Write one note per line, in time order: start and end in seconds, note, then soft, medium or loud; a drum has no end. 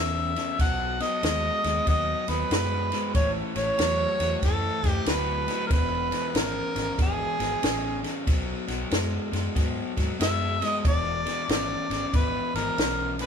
0.00 0.32 E2 medium
0.00 0.35 E2 medium
0.00 0.32 C#3 medium
0.00 0.56 E5 medium
0.36 0.57 E2 medium
0.36 0.57 C#3 medium
0.36 snare soft
0.36 ride soft
0.59 0.99 B1 medium
0.59 0.96 B2 medium
0.59 0.96 F#3 medium
0.59 1.03 F#5 medium
0.59 kick medium
0.59 snare soft
0.59 ride medium
1.00 1.21 B2 medium
1.00 1.21 F#3 medium
1.00 1.87 D#5 loud
1.00 snare soft
1.00 ride medium
1.23 1.49 D#2 medium
1.23 1.60 B2 medium
1.23 1.60 G#3 medium
1.23 snare medium
1.23 ride medium
1.63 1.79 D#2 medium
1.63 1.84 B2 medium
1.63 1.85 G#3 medium
1.63 snare soft
1.63 ride medium
1.86 2.13 D#2 medium
1.86 2.23 B2 medium
1.86 2.24 F#3 medium
1.86 2.31 D#5 medium
1.86 kick medium
1.86 snare soft
1.86 ride medium
2.28 2.42 D#2 medium
2.28 2.48 B2 medium
2.28 2.49 F#3 medium
2.28 3.14 B4 medium
2.28 snare soft
2.28 ride medium
2.50 2.91 F#2 medium
2.50 2.87 B2 medium
2.50 2.88 G#3 medium
2.50 snare medium
2.50 ride medium
2.92 3.12 B2 medium
2.92 3.13 G#3 medium
2.92 snare soft
2.92 ride medium
3.15 3.40 A1 medium
3.15 3.52 A2 medium
3.15 3.52 E3 medium
3.15 3.31 C#5 medium
3.15 kick loud
3.15 snare soft
3.15 ride medium
3.55 3.70 A1 medium
3.55 3.76 A2 medium
3.55 3.76 E3 medium
3.55 4.39 C#5 loud
3.55 snare soft
3.55 ride medium
3.78 4.04 E2 medium
3.78 4.15 A2 medium
3.78 4.15 F#3 medium
3.78 snare medium
3.78 ride medium
4.19 4.34 E2 medium
4.19 4.40 A2 medium
4.19 4.41 F#3 medium
4.19 snare soft
4.19 ride medium
4.42 4.68 F#2 medium
4.42 4.80 A2 medium
4.42 4.80 E3 medium
4.42 4.89 A4 medium
4.42 kick medium
4.42 snare soft
4.42 ride medium
4.83 4.98 F#2 medium
4.83 5.04 A2 medium
4.83 5.05 E3 medium
4.83 kick medium
4.83 snare soft
4.83 ride medium
4.89 5.10 G4 medium
5.06 5.46 D2 medium
5.06 5.43 A2 medium
5.06 5.44 F#3 medium
5.06 5.66 B4 medium
5.06 snare medium
5.06 ride medium
5.48 5.68 A2 medium
5.48 5.68 F#3 medium
5.48 snare soft
5.48 ride medium
5.67 6.11 E1 medium
5.67 5.73 A#4 medium
5.67 kick loud
5.67 ride medium
5.71 6.08 E2 medium
5.71 6.08 B2 medium
5.71 6.39 B4 medium
5.71 snare soft
6.11 6.32 E2 medium
6.11 6.32 B2 medium
6.11 snare soft
6.11 ride medium
6.34 6.60 G#1 medium
6.34 6.71 E2 medium
6.34 6.72 C#3 medium
6.34 7.00 A#4 medium
6.34 snare loud
6.34 ride medium
6.75 6.90 G#1 medium
6.75 6.96 E2 medium
6.75 6.96 C#3 medium
6.75 snare soft
6.75 ride medium
6.98 7.24 G#1 medium
6.98 7.35 E2 medium
6.98 7.35 B2 loud
6.98 kick medium
6.98 snare soft
6.98 ride medium
7.02 8.25 G#4 medium
7.39 7.54 G#1 medium
7.39 7.60 E2 medium
7.39 7.60 B2 medium
7.39 snare soft
7.39 ride medium
7.62 8.03 A1 medium
7.62 8.00 E2 medium
7.62 8.00 C#3 medium
7.62 snare medium
7.62 ride medium
8.03 8.24 E2 medium
8.03 8.25 C#3 medium
8.03 snare soft
8.03 ride soft
8.27 8.53 B1 medium
8.27 8.64 B2 medium
8.27 8.64 F#3 loud
8.27 kick loud
8.27 snare soft
8.27 ride medium
8.67 8.83 B1 medium
8.67 8.89 B2 medium
8.67 8.89 F#3 medium
8.67 snare soft
8.67 ride medium
8.91 9.17 F#2 medium
8.91 9.28 B2 medium
8.91 9.28 G#3 medium
8.91 snare medium
8.91 ride medium
9.31 9.47 F#2 medium
9.31 9.53 B2 medium
9.31 9.53 G#3 medium
9.31 snare soft
9.31 ride medium
9.55 9.82 G#2 medium
9.55 9.92 B2 medium
9.55 9.93 F#3 medium
9.55 kick medium
9.55 snare soft
9.55 ride medium
9.96 10.12 G#2 medium
9.96 10.17 B2 medium
9.96 10.18 F#3 medium
9.96 kick medium
9.96 snare soft
9.96 ride medium
10.19 10.60 F#2 medium
10.19 10.57 B2 medium
10.19 10.57 G#3 medium
10.19 10.63 E5 medium
10.19 snare medium
10.19 ride medium
10.61 10.82 B2 medium
10.61 10.82 G#3 medium
10.61 10.81 D#5 medium
10.61 snare soft
10.61 ride medium
10.85 11.25 E1 medium
10.85 11.22 E2 medium
10.85 11.22 B2 medium
10.85 11.46 D5 loud
10.85 kick loud
10.85 snare soft
10.85 ride medium
11.25 11.46 E2 medium
11.25 11.46 B2 medium
11.25 snare soft
11.25 ride medium
11.48 11.74 G#1 medium
11.48 11.85 E2 medium
11.48 11.86 C#3 medium
11.48 12.17 D5 medium
11.48 snare loud
11.48 ride medium
11.90 12.04 G#1 medium
11.90 12.11 E2 medium
11.90 12.11 C#3 medium
11.90 snare soft
11.90 ride medium
12.13 12.39 G#1 medium
12.13 12.50 E2 medium
12.13 12.51 B2 medium
12.13 12.55 B4 medium
12.13 kick medium
12.13 snare soft
12.13 ride medium
12.54 12.69 G#1 medium
12.54 12.76 E2 medium
12.54 12.76 B2 medium
12.54 13.15 A#4 medium
12.54 snare soft
12.54 ride medium
12.78 13.26 B1 medium
12.78 13.15 E2 medium
12.78 13.15 C#3 medium
12.78 snare loud
12.78 ride medium
13.19 13.26 E2 medium
13.19 13.26 C#3 medium
13.19 13.26 B4 medium
13.19 snare soft
13.19 ride medium